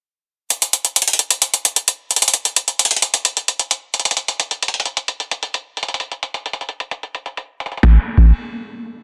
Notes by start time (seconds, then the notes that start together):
0.50 closed hi-hat
0.62 closed hi-hat
0.73 closed hi-hat
0.85 closed hi-hat
0.96 closed hi-hat
1.02 closed hi-hat
1.08 closed hi-hat
1.13 closed hi-hat
1.19 closed hi-hat
1.30 closed hi-hat
1.42 closed hi-hat
1.54 closed hi-hat
1.65 closed hi-hat
1.76 closed hi-hat
1.88 closed hi-hat
2.11 closed hi-hat
2.16 closed hi-hat
2.22 closed hi-hat
2.28 closed hi-hat
2.34 closed hi-hat
2.45 closed hi-hat
2.56 closed hi-hat
2.68 closed hi-hat
2.79 closed hi-hat
2.85 closed hi-hat
2.91 closed hi-hat
2.96 closed hi-hat
3.02 closed hi-hat
3.14 closed hi-hat
3.25 closed hi-hat
3.37 closed hi-hat
3.48 closed hi-hat
3.59 closed hi-hat
3.71 closed hi-hat
3.94 closed hi-hat
4.00 closed hi-hat
4.05 closed hi-hat
4.11 closed hi-hat
4.17 closed hi-hat
4.28 closed hi-hat
4.40 closed hi-hat
4.51 closed hi-hat
4.63 closed hi-hat
4.68 closed hi-hat
4.74 closed hi-hat
4.80 closed hi-hat
4.86 closed hi-hat
4.97 closed hi-hat
5.08 closed hi-hat
5.20 closed hi-hat
5.31 closed hi-hat
5.43 closed hi-hat
5.54 closed hi-hat
5.77 closed hi-hat
5.83 closed hi-hat
5.88 closed hi-hat
5.94 closed hi-hat
6.00 closed hi-hat
6.12 closed hi-hat
6.23 closed hi-hat
6.34 closed hi-hat
6.46 closed hi-hat
6.53 closed hi-hat
6.61 closed hi-hat
6.69 closed hi-hat
6.80 closed hi-hat
6.91 closed hi-hat
7.03 closed hi-hat
7.15 closed hi-hat
7.26 closed hi-hat
7.37 closed hi-hat
7.60 closed hi-hat
7.66 closed hi-hat
7.72 closed hi-hat
7.77 closed hi-hat
7.83 kick, snare
8.17 kick, crash